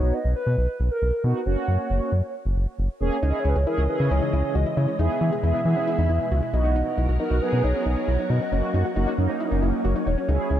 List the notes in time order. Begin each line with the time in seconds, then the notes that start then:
Already playing: B3 D#4 F#4 C#5
0.03 B1
0.14 D#5
0.25 B1
0.36 B4
0.47 B2
0.58 B1
0.80 B1
0.91 A#4
1.02 B1
1.24 B2 B3 D#4 F#4 B4
1.46 F#1 A#3 C#4 F#4 C#5
1.68 F#2
1.90 F#1
2.12 F#2
2.45 F#1
2.56 F#1
2.79 F#1
3.00 E1 A#3 C#4 G#4 C#5
3.22 C#2 C#3 E3 G#3 C#4 D#4 E4 G#4 D#5
3.30 D#5
3.40 C#5
3.45 C#2 E4
3.49 B4
3.56 C#2 G#4 C#5
3.66 C#4 E4 G#4 A#4
3.78 C#2 E4
3.89 C#4 E4 G#4 B4
4.00 C#3 C#4
4.11 C#2 E4 C#5
4.22 D#4
4.33 C#2 E4 C#5
4.55 C#2 F#4 D#5
4.66 E4
4.77 C#3 E4 C#5
4.88 C#4
4.99 E2 B2 E3 B3 D#4 E4 G#4 E5
5.21 E3 E4
5.32 G#4
5.43 E2 B3 E4 G#4 E5
5.54 E4
5.65 E3 B3 E4 G#4
5.77 C#4
5.87 E4
5.98 E2 D#4
6.09 E2 E4
6.31 C#2 F#4
6.42 E4
6.53 B1 F#3 B3 D#4 E4 F#4 A#4 D#5
6.65 D#4
6.76 D#4
6.98 B1 E4
7.09 B1 F#4
7.20 B3 D#4 F#4 A#4
7.31 B1 D#4
7.42 B3 D#4 G#4 B4
7.53 B2 C#4
7.64 B1 D#4 C#5
7.75 C#4
7.86 B1 D#4 C#5
8.08 B1 E4
8.19 D#4
8.30 B2 D#4 D#5
8.41 C#4
8.52 F#1 A#3 C#4 F#4
8.74 F#2 D#4
8.85 F#4
8.96 F#1 A#3 C#4 D#4 F#4
9.07 D#4
9.18 F#2 A#3 C#4 D#4
9.29 C#4
9.40 E4
9.51 F#1 D#4
9.62 F#1 E4
9.84 F#1 F#4
9.96 D#4
10.06 E1 D#4 C#5
10.18 C#4
10.28 C#2 G#3 C#4 D#4 E4 G#4
10.51 C#2 E4